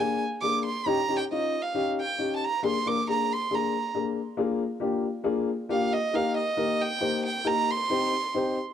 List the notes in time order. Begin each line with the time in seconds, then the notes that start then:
0.00 A#3 D4 G#4 G#5
0.42 A#3 D4 G#4 D6
0.66 C6
0.86 C#4 D#4 G4 A#5
1.08 C#4 D#4 G4
1.18 G5
1.32 C#4 D#4 F4 D#5
1.62 F5
1.75 C#4 D#4 G4
2.00 G5
2.19 C#4 D#4 G4
2.36 A5
2.44 A#5
2.63 A#3 D4 G#4 C6
2.86 A#3 D4 A#4 D6
3.08 A#3 D4 G#4 A#5
3.33 C6
3.51 A#3 D4 G#4 A#5
3.94 A#3 D4 G#4
4.37 A#3 D4 F4 G#4
4.80 A#3 D4 F4 G4
5.24 A#3 D4 F4 G#4
5.69 A#3 D4 F4 G4 F5
5.93 D#5
6.13 A#3 D#4 G4 A#4 F5
6.37 D#5
6.57 A#3 D#4 G4 A#4
6.82 G5
7.00 A#3 D#4 G4 C5
7.26 G5
7.44 A#3 D#4 G4 A#4 A#5
7.70 C6
7.90 C4 D#4 G4 C5
8.34 C4 D#4 G4 C5